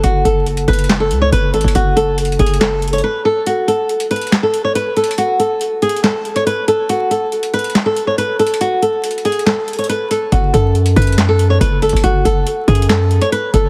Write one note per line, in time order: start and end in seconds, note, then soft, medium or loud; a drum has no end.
0.04 0.24 F#1 loud
0.04 0.24 F#4 medium
0.04 kick loud
0.04 closed hi-hat medium
0.25 0.66 F#1 loud
0.25 0.45 A4 medium
0.25 kick medium
0.25 closed hi-hat medium
0.47 closed hi-hat soft
0.57 closed hi-hat medium
0.68 1.12 F#1 loud
0.68 0.98 B4 medium
0.68 kick loud
0.68 closed hi-hat medium
0.73 closed hi-hat medium
0.79 closed hi-hat medium
0.84 closed hi-hat medium
0.89 snare loud
0.89 clap medium
0.89 closed hi-hat medium
1.00 1.20 A4 medium
1.11 1.31 C#2 loud
1.11 closed hi-hat medium
1.21 1.32 C#5 medium
1.32 1.55 F#1 loud
1.32 1.53 B4 medium
1.32 kick medium
1.32 closed hi-hat medium
1.54 1.64 G#1 medium
1.54 1.74 A4 medium
1.54 closed hi-hat medium
1.61 1.75 F#1 loud
1.61 kick loud
1.61 closed hi-hat medium
1.68 closed hi-hat medium
1.75 2.37 F#1 loud
1.75 1.95 F#4 medium
1.75 kick loud
1.75 closed hi-hat medium
1.97 2.17 A4 medium
1.97 closed hi-hat medium
2.18 closed hi-hat medium
2.25 closed hi-hat medium
2.32 closed hi-hat soft
2.39 3.01 F#1 loud
2.39 2.60 G#4 medium
2.39 kick loud
2.39 closed hi-hat medium
2.47 closed hi-hat medium
2.54 closed hi-hat medium
2.61 2.91 A4 medium
2.61 snare loud
2.61 clap medium
2.61 closed hi-hat medium
2.82 closed hi-hat medium
2.88 closed hi-hat medium
2.93 3.03 C#5 medium
2.93 closed hi-hat medium
2.98 closed hi-hat medium
3.04 3.24 B4 medium
3.25 3.45 A4 medium
3.46 3.67 F#4 medium
3.46 closed hi-hat medium
3.68 3.88 A4 medium
3.68 closed hi-hat medium
3.89 closed hi-hat soft
4.00 closed hi-hat medium
4.11 4.41 B4 medium
4.11 closed hi-hat medium
4.16 closed hi-hat medium
4.22 closed hi-hat medium
4.27 closed hi-hat medium
4.32 snare loud
4.32 clap medium
4.32 closed hi-hat medium
4.43 4.63 A4 medium
4.54 closed hi-hat medium
4.64 4.75 C#5 medium
4.75 4.95 B4 medium
4.75 closed hi-hat medium
4.97 5.17 A4 medium
4.97 closed hi-hat medium
5.04 closed hi-hat medium
5.11 closed hi-hat medium
5.18 5.38 F#4 loud
5.18 closed hi-hat medium
5.39 5.60 A4 medium
5.39 closed hi-hat medium
5.61 closed hi-hat medium
5.82 6.03 G#4 medium
5.82 closed hi-hat medium
5.89 closed hi-hat medium
5.97 closed hi-hat medium
6.04 6.34 A4 medium
6.04 snare loud
6.04 clap medium
6.04 closed hi-hat medium
6.25 closed hi-hat soft
6.36 6.46 C#5 medium
6.36 closed hi-hat medium
6.46 6.67 B4 medium
6.46 closed hi-hat medium
6.68 6.88 A4 medium
6.68 closed hi-hat medium
6.89 7.10 F#4 medium
6.89 closed hi-hat medium
7.11 7.31 A4 medium
7.11 closed hi-hat medium
7.32 closed hi-hat soft
7.43 closed hi-hat medium
7.54 7.84 B4 medium
7.54 closed hi-hat medium
7.59 closed hi-hat medium
7.64 closed hi-hat medium
7.70 closed hi-hat medium
7.75 snare loud
7.75 clap medium
7.75 closed hi-hat medium
7.86 8.06 A4 medium
7.97 closed hi-hat medium
8.07 8.17 C#5 medium
8.18 8.38 B4 medium
8.18 closed hi-hat medium
8.39 8.60 A4 medium
8.39 closed hi-hat medium
8.47 closed hi-hat medium
8.54 closed hi-hat medium
8.61 8.81 F#4 medium
8.61 closed hi-hat medium
8.82 9.03 A4 medium
8.82 closed hi-hat medium
9.04 closed hi-hat medium
9.11 closed hi-hat medium
9.18 closed hi-hat soft
9.25 9.45 G#4 medium
9.25 closed hi-hat medium
9.32 closed hi-hat medium
9.39 closed hi-hat medium
9.46 9.77 A4 medium
9.46 snare loud
9.46 clap medium
9.46 closed hi-hat medium
9.68 closed hi-hat medium
9.73 closed hi-hat medium
9.79 9.89 C#5 medium
9.79 closed hi-hat medium
9.84 closed hi-hat medium
9.89 10.10 B4 medium
9.89 closed hi-hat medium
10.11 10.31 A4 medium
10.11 closed hi-hat medium
10.32 10.53 F#1 loud
10.32 10.53 F#4 medium
10.32 kick loud
10.32 closed hi-hat medium
10.54 10.95 F#2 loud
10.54 10.74 A4 medium
10.54 kick medium
10.54 closed hi-hat medium
10.75 closed hi-hat soft
10.86 closed hi-hat medium
10.96 11.58 F#2 loud
10.96 11.27 B4 medium
10.96 kick loud
10.96 closed hi-hat medium
11.02 closed hi-hat medium
11.07 closed hi-hat medium
11.13 closed hi-hat medium
11.18 snare loud
11.18 clap medium
11.18 closed hi-hat medium
11.29 11.49 A4 medium
11.39 closed hi-hat medium
11.50 11.60 C#5 medium
11.61 11.92 F#1 loud
11.61 11.81 B4 medium
11.61 kick medium
11.61 closed hi-hat medium
11.82 12.02 A4 medium
11.82 closed hi-hat medium
11.89 12.03 F#1 loud
11.89 kick medium
11.89 closed hi-hat medium
11.96 closed hi-hat medium
12.04 12.24 F#1 loud
12.04 12.24 F#4 loud
12.04 kick loud
12.04 closed hi-hat medium
12.25 12.46 F#1 loud
12.25 12.45 A4 medium
12.25 kick loud
12.25 closed hi-hat medium
12.47 closed hi-hat medium
12.68 13.19 F#2 loud
12.68 12.88 G#4 medium
12.68 kick loud
12.68 closed hi-hat medium
12.75 closed hi-hat medium
12.82 closed hi-hat medium
12.89 13.20 A4 medium
12.89 snare loud
12.89 clap medium
12.89 closed hi-hat medium
13.11 closed hi-hat soft
13.21 13.32 C#5 medium
13.21 closed hi-hat medium
13.32 13.52 B4 medium
13.32 closed hi-hat medium
13.54 13.69 F#1 loud
13.54 13.69 A4 medium
13.54 kick loud
13.54 closed hi-hat medium